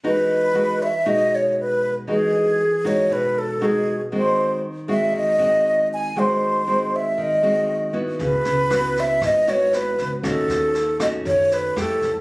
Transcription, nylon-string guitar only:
\new Staff \with { instrumentName = "Nylon-string guitar" } { \time 4/4 \key e \major \tempo 4 = 118 << { <gis dis' fis'>4 <gis dis' fis'>8 r8 <gis dis' fis'>2 | <gis dis' fis'>4 r8 <gis dis' fis'>4. <gis dis' fis'>8 r8 | <gis bis fis'>4 r8 <gis bis fis'>4 <gis bis fis'>4. | <gis bis fis'>4 <gis bis fis'>4. <gis bis fis'>4 <b e' fis'>8~ |
<b e' fis'>4 <b e' fis'>4. <b e' fis'>4. | <a cis' fis'>4 r8 <a cis' fis'>4. <a e' g'>8 r8 | } \\ { e2 b,2 | e2 b,2 | dis2 dis2 | dis2 dis2 |
cis2 gis,2 | dis2 dis4 r4 | } >> }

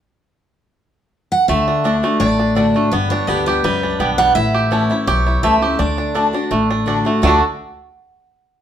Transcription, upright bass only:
\new Staff \with { instrumentName = "Upright bass" } { \clef bass \time 4/4 \key d \major \tempo 4 = 167 r1 | d,2 a,,2 | g,,4 d,4 cis,4 b,,4 | a,,2 b,,4 cis,4 |
d,2 a,,2 | d,8 r2. r8 | }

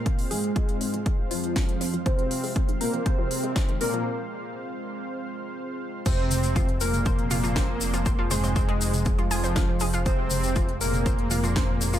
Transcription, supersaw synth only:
\new Staff \with { instrumentName = "Supersaw synth" } { \clef bass \time 4/4 \key f \minor \tempo 4 = 120 <bes, bes>8 <aes, aes>2 <f, f>4. | <c c'>4. <bes, bes>8 <c c'>4. <bes, bes>8 | r1 | <c c'>4. <bes, bes>2~ <bes, bes>8~ |
<bes, bes>8 <aes, aes>2 <f, f>4. | <c c'>4. <bes, bes>2~ <bes, bes>8 | }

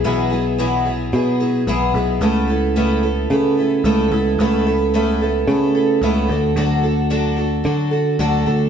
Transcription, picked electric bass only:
\new Staff \with { instrumentName = "Picked electric bass" } { \clef bass \time 4/4 \key a \lydian \tempo 4 = 110 b,,2 b,4 b,,8 b,,8 | cis,2 cis4 cis,8 cis,8 | cis,2 cis4 cis,8 d,8 | d,2 d4 d,8 d,8 | }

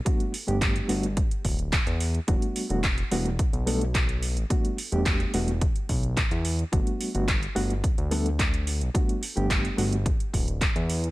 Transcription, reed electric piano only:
\new Staff \with { instrumentName = "Reed electric piano" } { \time 4/4 \key g \major \tempo 4 = 108 <g a b d' fis'>8 r16 <g a b d' g'>8. <g a b d' fis'>16 r2 r16 | <g a b d' fis'>8. <g a b d' fis'>16 r8 <g a b d' fis'>16 r8. <g a b d' a'>16 r4 r16 | <g a b d' fis'>8 r16 <g a b d' g'>8. <g a b d' fis'>16 r2 r16 | <g a b d' fis'>8. <g a b d' fis'>16 r8 <g a b d' fis'>16 r8. <g a b d' a'>16 r4 r16 |
<g a b d' fis'>8 r16 <g a b d' g'>8. <g a b d' fis'>16 r2 r16 | }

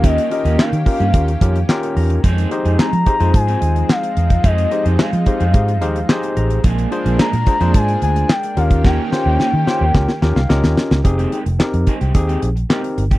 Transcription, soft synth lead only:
\new Staff \with { instrumentName = "Soft synth lead" } { \time 4/4 \key f \minor \tempo 4 = 109 ees''8 ees''8 f''2~ f''8 r8 | r4 bes''4 aes''4 f''4 | ees''8 ees''8 f''2~ f''8 r8 | r4 bes''4 aes''8 aes''8 g''8 f''8 |
g''2.~ g''8 r8 | r1 | }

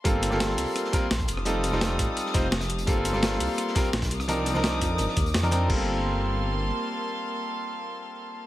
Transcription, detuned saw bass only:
\new Staff \with { instrumentName = "Detuned saw bass" } { \clef bass \time 4/4 \key g \minor \tempo 4 = 170 g,,8. g,,8. c,16 r4 r16 bes,,8 f,,8~ | f,,8. f,,8. a,,16 r8. f,,4. | g,,8. g,,8. c,16 r4 r16 bes,,8 c,8~ | c,8. c,8. f,8 g,,16 r16 ees,8 f,4 |
g,,2. r4 | r1 | }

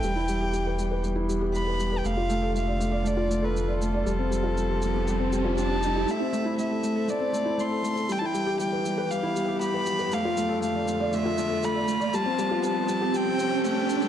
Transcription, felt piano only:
\new Staff \with { instrumentName = "Felt piano" } { \time 4/4 \key a \minor \tempo 4 = 119 g16 e'16 g16 g'16 g16 b'16 g16 b'16 g16 e'16 g16 g'16 g16 b'16 g16 b'16 | a16 f'16 a16 a'16 a16 d''16 a16 d''16 a16 f'16 a16 a'16 a16 d''16 a16 d''16 | g16 c'16 g16 f'16 g16 g'16 g16 g'16 g16 c'16 g16 f'16 g16 g'16 g16 g'16 | a16 c'16 a16 e'16 a16 a'16 a16 a'16 a16 c'16 a16 e'16 a16 a'16 a16 a'16 |
g16 e'16 g16 g'16 g16 b'16 g16 b'16 g16 e'16 g16 g'16 g16 b'16 g16 b'16 | a16 f'16 a16 a'16 a16 d''16 a16 d''16 a16 f'16 a16 a'16 a16 d''16 a16 d''16 | g16 c'16 g16 f'16 g16 g'16 g16 g'16 g16 c'16 g16 c'16 a16 a16 c'16 g16 | }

